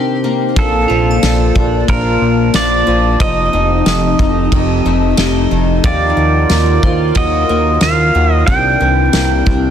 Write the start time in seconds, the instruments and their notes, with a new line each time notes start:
Already playing: ambient pad C3 C4 D4 D#4 A#4, twelve-string acoustic guitar C3 D#3 A#3 C4 G4, synth bell A#4 C5
0.24 twelve-string acoustic guitar A#3
0.56 analog synth bass A#1, twelve-string acoustic guitar A#2 D4, ambient pad A#3 F4 C5 D5 A5, pedal steel guitar A4, kick, ride
0.88 analog synth bass A#1, twelve-string acoustic guitar F3, synth bell F4
1.11 synth bell A5
1.23 analog synth bass A#1, snare, ride, tambourine
1.55 analog synth bass A#1, twelve-string acoustic guitar D4, kick
1.88 analog synth bass A#1, twelve-string acoustic guitar F3, pedal steel guitar A#4, kick, ride
2.21 analog synth bass A#1
2.54 analog synth bass A#1, twelve-string acoustic guitar D4, pedal steel guitar D5, snare, ride, tambourine
2.87 analog synth bass A#1, twelve-string acoustic guitar F3
3.20 analog synth bass F1, twelve-string acoustic guitar F2 D#4, ambient pad F3 C4 D#4 G4, pedal steel guitar D#5, kick, ride
3.53 analog synth bass F1, twelve-string acoustic guitar D#3
3.86 analog synth bass F1, twelve-string acoustic guitar A3, snare, ride, tambourine
4.19 analog synth bass F1, twelve-string acoustic guitar D#4, kick
4.52 analog synth bass F1, twelve-string acoustic guitar D#3, kick, ride
4.85 analog synth bass F1, twelve-string acoustic guitar A3
5.17 analog synth bass F1, twelve-string acoustic guitar D#4, synth bell G4, snare, ride, tambourine
5.51 analog synth bass F1, twelve-string acoustic guitar D#3
5.84 analog synth bass D#2, ambient pad D#3 F4 A#4, twelve-string acoustic guitar D#3 F4, pedal steel guitar D5, kick, ride
6.17 analog synth bass D#2, twelve-string acoustic guitar F#3
6.50 analog synth bass D#2, twelve-string acoustic guitar A#3, snare, ride, tambourine
6.83 analog synth bass D#2, twelve-string acoustic guitar F4, synth bell C5, kick
7.15 analog synth bass D#2, twelve-string acoustic guitar F#3, pedal steel guitar D#5, kick, ride
7.49 analog synth bass D#2, twelve-string acoustic guitar A#3
7.81 analog synth bass D#2, twelve-string acoustic guitar F4, pedal steel guitar F5, snare, ride, tambourine
8.15 analog synth bass D#2, twelve-string acoustic guitar F#3
8.34 pedal steel guitar D#5
8.47 analog synth bass C2, twelve-string acoustic guitar C3 D4, ambient pad C3 C4 D4 E4, pedal steel guitar G5, kick, ride
8.80 analog synth bass C2, twelve-string acoustic guitar E3
9.13 analog synth bass C2, twelve-string acoustic guitar A#3, snare, ride, tambourine
9.46 analog synth bass C2, twelve-string acoustic guitar D4, kick